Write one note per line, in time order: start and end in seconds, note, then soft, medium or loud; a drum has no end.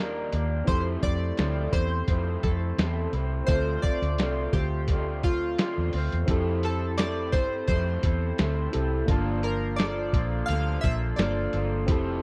0.00 0.29 D#2 medium
0.00 0.33 D#3 medium
0.00 0.33 G3 medium
0.00 0.33 A#3 medium
0.00 0.27 D4 medium
0.00 0.31 D4 medium
0.00 0.28 F4 medium
0.00 0.29 G4 medium
0.00 0.28 A#4 medium
0.32 0.61 D#2 medium
0.32 0.68 G3 soft
0.32 0.68 A#3 soft
0.32 0.67 D4 soft
0.32 closed hi-hat medium
0.64 0.96 F2 loud
0.64 1.02 F3 medium
0.64 1.03 A3 medium
0.64 3.42 C4 medium
0.64 1.03 C4 medium
0.64 3.43 E4 medium
0.64 3.44 G4 medium
0.64 0.82 C5 medium
0.64 kick loud
0.64 closed hi-hat medium
0.69 1.01 E4 medium
0.69 3.45 A4 medium
1.02 1.31 F2 medium
1.02 1.37 A3 soft
1.02 1.37 C4 soft
1.02 1.38 E4 soft
1.02 1.75 D5 loud
1.02 kick medium
1.02 closed hi-hat medium
1.37 1.66 D2 medium
1.37 1.73 F3 medium
1.37 1.73 A3 medium
1.37 1.72 C4 medium
1.37 1.71 E4 medium
1.37 snare medium
1.37 closed hi-hat medium
1.72 2.01 E2 medium
1.72 2.08 A3 soft
1.72 2.08 C4 soft
1.72 2.08 E4 soft
1.72 2.39 C5 medium
1.72 kick medium
1.72 closed hi-hat medium
2.08 2.36 F2 medium
2.08 2.43 F3 medium
2.08 2.43 A3 medium
2.08 2.43 C4 medium
2.08 2.41 E4 medium
2.08 kick medium
2.08 closed hi-hat medium
2.43 2.71 F2 medium
2.43 2.78 A3 soft
2.43 2.79 C4 soft
2.43 2.78 E4 soft
2.43 3.09 A4 medium
2.43 kick medium
2.43 closed hi-hat medium
2.78 3.06 E2 medium
2.78 3.14 A3 medium
2.78 3.14 C4 medium
2.78 3.13 E4 medium
2.78 snare loud
2.78 closed hi-hat medium
3.13 3.41 C2 medium
3.13 3.48 A3 soft
3.13 3.48 C4 soft
3.13 3.48 E4 medium
3.13 closed hi-hat medium
3.44 3.76 D2 medium
3.44 6.22 C4 medium
3.44 6.24 F4 medium
3.44 3.83 C5 loud
3.44 6.23 E5 medium
3.44 kick loud
3.48 3.83 D3 medium
3.48 3.83 A3 medium
3.48 3.83 C4 medium
3.48 3.82 F4 medium
3.48 6.25 A4 medium
3.48 closed hi-hat medium
3.82 4.18 A3 soft
3.82 4.19 C4 soft
3.82 4.18 F4 medium
3.82 4.49 D5 loud
3.82 kick medium
3.82 closed hi-hat medium
4.02 4.18 D2 medium
4.02 closed hi-hat soft
4.18 4.46 C2 medium
4.18 4.53 D3 medium
4.18 4.54 A3 medium
4.18 4.53 C4 medium
4.18 4.52 F4 medium
4.18 snare medium
4.18 closed hi-hat medium
4.53 5.54 D2 medium
4.53 4.89 A3 soft
4.53 4.89 C4 soft
4.53 4.88 F4 medium
4.53 5.25 G4 medium
4.53 kick medium
4.53 snare soft
4.53 closed hi-hat medium
4.88 5.23 D3 medium
4.88 5.24 A3 medium
4.88 5.23 C4 medium
4.88 5.22 F4 medium
4.88 kick medium
4.88 closed hi-hat medium
5.23 5.58 A3 soft
5.23 5.59 C4 soft
5.23 5.58 F4 soft
5.23 5.90 F4 medium
5.23 kick medium
5.23 closed hi-hat medium
5.58 5.93 D3 medium
5.58 5.94 A3 medium
5.58 5.94 C4 medium
5.58 5.92 F4 medium
5.58 snare loud
5.58 closed hi-hat medium
5.78 5.90 E2 medium
5.93 6.09 D2 medium
5.93 6.28 A3 soft
5.93 6.28 C4 soft
5.93 6.28 F4 medium
5.93 open hi-hat medium
6.12 6.26 E2 medium
6.12 closed hi-hat soft
6.26 7.33 F2 loud
6.26 6.63 F3 medium
6.26 6.64 A3 medium
6.26 8.68 C4 medium
6.26 6.64 C4 medium
6.26 8.69 E4 medium
6.26 6.63 E4 medium
6.26 8.70 G4 medium
6.26 kick loud
6.26 closed hi-hat medium
6.30 6.62 A4 loud
6.30 8.70 A4 medium
6.63 6.98 C4 soft
6.63 6.99 E4 soft
6.63 6.98 A4 medium
6.63 6.97 A4 medium
6.63 closed hi-hat medium
6.98 7.33 A3 medium
6.98 7.34 C4 medium
6.98 7.33 E4 medium
6.98 7.32 A4 medium
6.98 7.34 D5 medium
6.98 snare loud
6.98 closed hi-hat medium
7.32 7.61 G2 medium
7.32 7.68 C4 soft
7.32 7.68 E4 medium
7.32 7.68 A4 medium
7.32 7.65 C5 medium
7.32 kick medium
7.32 snare soft
7.32 closed hi-hat medium
7.68 7.96 F2 medium
7.68 8.03 F3 medium
7.68 8.03 A3 medium
7.68 8.04 C4 medium
7.68 8.04 E4 medium
7.68 8.02 A4 medium
7.68 8.69 C5 medium
7.68 kick medium
7.68 closed hi-hat medium
8.03 8.31 E2 medium
8.03 8.38 C4 soft
8.03 8.39 E4 soft
8.03 8.38 A4 medium
8.03 kick medium
8.03 closed hi-hat medium
8.38 8.67 D2 medium
8.38 8.73 A3 medium
8.38 8.74 C4 medium
8.38 8.74 E4 medium
8.38 8.72 A4 medium
8.38 snare loud
8.38 closed hi-hat medium
8.71 9.02 C2 medium
8.71 9.07 C4 medium
8.71 9.08 E4 soft
8.71 9.09 E4 medium
8.71 9.08 G4 medium
8.71 9.08 A4 medium
8.71 9.09 A4 medium
8.71 closed hi-hat medium
8.76 9.10 C4 soft
9.06 10.09 G1 medium
9.06 9.44 G2 medium
9.06 9.44 D3 medium
9.06 9.44 F3 medium
9.06 11.13 A#3 medium
9.06 9.44 A#3 medium
9.06 11.14 D4 medium
9.06 11.15 F4 medium
9.06 kick loud
9.06 closed hi-hat medium
9.10 9.44 F4 medium
9.10 9.44 A4 medium
9.10 11.16 A5 medium
9.43 9.77 F3 soft
9.43 9.78 A#3 soft
9.43 9.79 F4 medium
9.43 9.76 A#4 medium
9.43 closed hi-hat medium
9.76 10.13 F3 medium
9.76 10.14 A#3 medium
9.76 10.43 D5 medium
9.76 snare loud
9.76 closed hi-hat medium
9.80 10.13 F4 medium
9.80 10.12 A4 medium
10.13 10.41 A#1 medium
10.13 10.49 F3 soft
10.13 10.49 A#3 soft
10.13 10.49 F4 soft
10.13 10.48 A4 medium
10.13 kick medium
10.13 closed hi-hat medium
10.46 10.77 D2 medium
10.46 10.84 G2 medium
10.46 10.84 D3 medium
10.46 10.79 F5 loud
10.46 closed hi-hat medium
10.50 10.84 F3 medium
10.50 10.84 A#3 medium
10.50 10.83 F4 medium
10.50 10.82 A4 medium
10.81 11.12 A#1 medium
10.81 11.18 F4 soft
10.81 11.18 A4 medium
10.81 10.95 E5 medium
10.81 kick medium
10.81 closed hi-hat medium
10.86 11.16 F3 soft
10.86 11.17 A#3 soft
11.16 11.46 G1 medium
11.16 11.53 F3 medium
11.16 11.88 A#3 soft
11.16 11.53 A#3 medium
11.16 11.88 D4 soft
11.16 11.54 F4 medium
11.16 11.89 F4 soft
11.16 11.89 A4 soft
11.16 11.52 A4 medium
11.16 11.68 D5 medium
11.16 snare loud
11.16 closed hi-hat medium
11.53 11.88 G1 medium
11.53 11.87 F3 soft
11.53 11.89 A#3 soft
11.53 11.89 F4 soft
11.53 11.88 A4 medium
11.53 closed hi-hat medium
11.86 12.22 F1 loud
11.86 12.22 F3 medium
11.86 12.22 A3 medium
11.86 12.22 C4 medium
11.86 12.22 E4 medium
11.86 12.22 E4 loud
11.86 12.22 G4 medium
11.86 12.22 A4 loud
11.86 kick loud
11.86 closed hi-hat medium
11.92 12.22 A4 medium